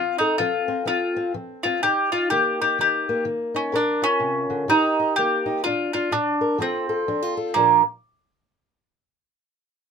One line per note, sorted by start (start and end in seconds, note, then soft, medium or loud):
0.00 0.36 F3 medium
0.00 0.39 C4 medium
0.00 0.18 F4 loud
0.18 0.38 D#4 medium
0.18 1.80 A4 medium
0.38 0.83 F3 medium
0.38 0.67 C4 medium
0.38 0.86 F4 medium
0.68 0.85 C4 medium
0.85 1.30 F3 medium
0.85 1.15 C4 medium
0.85 1.32 F4 medium
1.16 1.64 C4 medium
1.34 1.79 F3 medium
1.63 1.81 C4 medium
1.63 1.82 F4 medium
1.83 2.27 D#3 medium
1.83 2.12 D#4 medium
1.83 2.12 G4 loud
2.12 2.60 D#4 medium
2.12 2.30 F4 medium
2.30 2.75 D#3 medium
2.30 3.09 A#3 medium
2.30 2.60 G4 medium
2.62 2.79 D#4 medium
2.62 2.78 G4 medium
2.79 3.22 D#3 medium
2.79 3.53 D#4 medium
2.79 3.24 G4 medium
3.09 5.17 A#3 medium
3.25 3.69 D#3 medium
3.54 3.75 C#4 medium
3.54 3.71 D#4 medium
3.72 4.17 A#2 medium
3.72 4.04 D4 medium
3.72 4.67 A#4 medium
4.02 4.71 C#4 medium
4.02 4.66 F4 medium
4.20 4.49 C3 medium
4.50 4.68 D3 medium
4.68 5.12 D#3 medium
4.68 5.16 D#4 medium
4.68 5.64 G4 medium
5.00 5.45 D#4 medium
5.16 5.61 D#3 medium
5.16 5.65 A#3 medium
5.16 5.63 G4 loud
5.46 5.62 D#4 medium
5.64 6.09 A#2 medium
5.64 5.93 D4 medium
5.64 5.92 F4 loud
5.93 6.11 D4 medium
5.93 6.13 F4 medium
6.11 6.55 A#2 medium
6.11 6.57 D4 medium
6.11 6.61 D4 medium
6.41 6.57 A#4 medium
6.58 7.03 F3 medium
6.58 7.53 C4 medium
6.58 7.33 C4 medium
6.58 7.08 F4 medium
6.58 6.88 A4 medium
6.89 7.36 A4 medium
7.08 7.51 F3 medium
7.08 7.22 D4 medium
7.22 7.55 F4 soft
7.37 7.53 A4 medium
7.54 7.81 A#2 medium
7.54 7.81 F3 medium
7.54 7.81 A#3 medium
7.54 7.82 D4 medium
7.54 7.82 F4 medium
7.58 7.82 A#4 medium